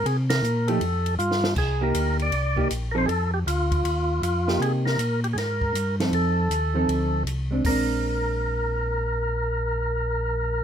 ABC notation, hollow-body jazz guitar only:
X:1
M:4/4
L:1/8
Q:"Swing" 1/4=158
K:Bbmix
V:1 name="Hollow-body jazz guitar"
z3 [F,=A,EG] z4 | z [B,EG]3 z [B,EG] z [F,CE=A] | z6 z [B,EG]- | [B,EG]2 z4 z [F,CE=A]- |
[F,CE=A]2 z [F,CEA]3 z [_A,CD] | [A,CD]8- | [A,CD]8 |]